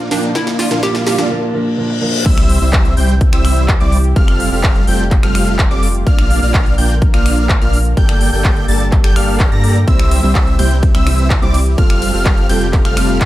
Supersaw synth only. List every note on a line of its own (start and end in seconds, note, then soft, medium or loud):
0.11 0.28 A#3 medium
0.11 0.28 D4 medium
0.11 0.28 F4 medium
0.11 0.28 D5 medium
0.11 0.28 G5 medium
0.35 0.68 A#3 medium
0.35 0.68 D4 medium
0.35 0.68 F4 medium
0.35 0.68 D5 medium
0.35 0.68 F5 loud
0.71 0.81 A#3 medium
0.71 0.81 D4 medium
0.71 0.81 F4 medium
0.71 0.81 D5 medium
0.71 0.81 F5 medium
0.83 1.16 A#3 medium
0.83 1.16 D4 medium
0.83 1.16 F4 medium
0.83 1.16 D5 medium
0.83 1.16 F5 loud
1.18 1.29 A#3 medium
1.18 1.29 D4 medium
1.18 1.29 F4 medium
1.18 1.28 D5 medium
1.18 1.29 F5 medium
2.26 2.59 G3 loud
2.26 2.58 C4 medium
2.26 2.59 E4 medium
2.26 2.59 C5 medium
2.26 2.58 E5 loud
2.61 2.94 G3 medium
2.61 2.94 C4 medium
2.61 2.94 E4 medium
2.61 2.94 C5 medium
2.61 2.94 E5 medium
2.97 3.14 G3 medium
2.97 3.14 C4 medium
2.97 3.14 E4 medium
2.97 3.14 C5 medium
2.97 3.14 G5 medium
3.33 3.66 G3 medium
3.33 3.66 C4 medium
3.33 3.66 E4 medium
3.33 3.66 C5 medium
3.33 3.66 E5 medium
3.80 3.97 G3 medium
3.80 3.97 C4 medium
3.80 3.97 E4 medium
3.80 3.97 C5 medium
3.80 3.97 D5 loud
4.16 4.49 G3 medium
4.16 4.49 C4 medium
4.16 4.49 F4 medium
4.16 4.49 A4 medium
4.16 4.49 F5 loud
4.52 4.85 G3 medium
4.52 4.85 C4 medium
4.52 4.85 F4 medium
4.52 4.85 A4 medium
4.52 4.85 F5 medium
4.88 5.04 G3 medium
4.88 5.04 C4 medium
4.88 5.04 F4 medium
4.88 5.04 A4 medium
4.88 5.04 G5 medium
5.23 5.56 G3 medium
5.23 5.56 C4 medium
5.23 5.56 F4 medium
5.23 5.56 A4 medium
5.23 5.56 F5 loud
5.71 5.87 G3 medium
5.71 5.87 C4 medium
5.71 5.87 F4 medium
5.71 5.87 A4 medium
5.71 5.87 D5 loud
6.07 6.40 A#3 medium
6.07 6.39 D4 medium
6.07 6.40 F4 medium
6.07 6.39 D5 medium
6.07 6.40 F5 loud
6.42 6.75 A#3 medium
6.42 6.75 D4 medium
6.42 6.75 F4 medium
6.42 6.75 D5 medium
6.42 6.75 F5 medium
6.78 6.95 A#3 medium
6.78 6.95 D4 medium
6.78 6.95 F4 medium
6.78 6.95 D5 medium
6.78 6.94 G5 medium
7.14 7.47 A#3 medium
7.14 7.47 D4 medium
7.14 7.47 F4 medium
7.14 7.47 D5 medium
7.14 7.47 F5 loud
7.61 7.78 A#3 medium
7.61 7.78 D4 medium
7.61 7.78 F4 medium
7.61 7.78 D5 medium
7.61 7.78 F5 loud
7.97 8.30 A#3 loud
7.97 8.30 G4 medium
7.97 8.30 A4 medium
7.97 8.30 D5 medium
7.97 8.30 G5 loud
8.33 8.66 A#3 medium
8.33 8.66 G4 medium
8.33 8.66 A4 medium
8.33 8.66 D5 medium
8.33 8.66 G5 medium
8.68 8.85 A#3 medium
8.68 8.85 G4 medium
8.68 8.85 A4 medium
8.68 8.85 D5 medium
8.68 8.85 A5 medium
9.04 9.14 A#3 medium
9.04 9.14 G4 medium
9.04 9.14 A4 medium
9.04 9.14 D5 medium
9.04 9.14 G5 loud
9.16 9.49 A#3 medium
9.16 9.49 G4 medium
9.16 9.49 A4 medium
9.16 9.49 D5 medium
9.16 9.49 F5 medium
9.52 9.78 A#3 medium
9.52 9.78 G4 medium
9.52 9.78 A4 medium
9.52 9.78 D5 medium
9.52 9.78 A#5 loud
9.87 10.20 G3 medium
9.87 10.20 C4 medium
9.87 10.20 E4 medium
9.87 10.20 C5 medium
9.87 10.20 E5 loud
10.23 10.56 G3 medium
10.23 10.56 C4 medium
10.23 10.56 E4 medium
10.23 10.56 C5 medium
10.23 10.56 E5 medium
10.59 10.75 G3 medium
10.59 10.75 C4 medium
10.59 10.75 E4 medium
10.59 10.75 C5 medium
10.59 10.75 G5 medium
10.95 11.28 G3 medium
10.95 11.28 C4 medium
10.95 11.28 E4 medium
10.95 11.28 C5 medium
10.95 11.28 E5 medium
11.42 11.59 G3 medium
11.42 11.59 C4 medium
11.42 11.59 E4 medium
11.42 11.59 C5 medium
11.42 11.59 D5 loud
11.78 12.11 G3 loud
11.78 12.11 C4 medium
11.78 12.11 F4 medium
11.78 12.11 A4 medium
11.78 12.11 F5 loud
12.14 12.47 G3 medium
12.14 12.47 C4 medium
12.14 12.47 F4 medium
12.14 12.47 A4 medium
12.14 12.47 F5 loud
12.50 12.66 G3 medium
12.50 12.66 C4 medium
12.50 12.66 F4 medium
12.50 12.66 A4 medium
12.50 12.66 G5 medium
12.85 13.18 G3 medium
12.85 13.18 C4 medium
12.85 13.18 F4 medium
12.85 13.18 A4 medium
12.85 13.18 F5 loud